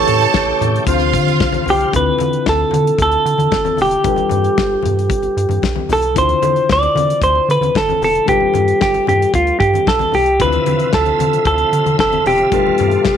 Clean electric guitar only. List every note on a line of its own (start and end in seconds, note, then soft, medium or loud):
0.00 0.83 C#5 loud
1.70 1.95 G4 loud
1.96 2.49 B4 loud
2.49 3.01 A4 medium
3.02 3.81 A4 loud
3.82 5.92 G4 loud
5.93 6.16 A4 loud
6.18 6.72 C5 loud
6.73 7.20 D5 loud
7.24 7.50 C5 loud
7.51 7.77 B4 loud
7.77 8.03 A4 medium
8.04 8.29 A4 loud
8.29 8.81 G4 loud
8.82 9.07 G4 medium
9.09 9.35 G4 medium
9.35 9.59 F4 medium
9.60 9.87 G4 medium
9.88 10.15 A4 loud
10.15 10.41 G4 loud
10.42 10.94 B4 loud
10.94 11.46 A4 medium
11.47 11.96 A4 medium
12.00 12.24 A4 medium
12.27 13.17 G4 loud